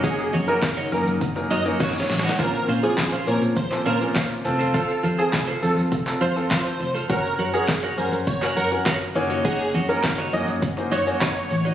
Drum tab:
HH |x-----o-----x-----o-----x-----o-----x-----o-----|x-----o-----x-----o-----x-----o-----x-----o-----|x-----o-----x-----o-----x-----o-----x-----o-----|x-----o-----x-----o-----x-----o-----x-----o-----|
SH |x--x--x--x--x--x--x--x--x--x--x--x--x--x--x--x--|x--x--x--x--x--x--x--x--x--x--x--x--x--x--x--x--|x--x--x--x--x--x--x--x--x--x--x--x--x--x--x--x--|x--x--x--x--x--x--x--x--x--x--x--x--x--x--x--x--|
CP |------------x-----------------------------------|------------x--------------x--------x-----------|------------x--------------x--------x-----------|------------x--------------x--------x-----------|
SD |------------o-----------------------o-o-o-o-o-o-|------------o-----------------------o-----------|------------o-----------------------o-----------|------------o-----------------------o-----------|
BD |o-----------o-----------o-----------o-----------|o-----------o-----------o-----------o-----------|o-----------o-----------o-----------o-----------|o-----------o-----------o-----------o-----------|

HH |x-----o-----x-----o-----x-----o-----x-----o-----|
SH |x--x--x--x--x--x--x--x--x--x--x--x--x--x--x--x--|
CP |------------x-----------------------x-----------|
SD |------------o-----------------------o-----------|
BD |o-----------o-----------o-----------o-----------|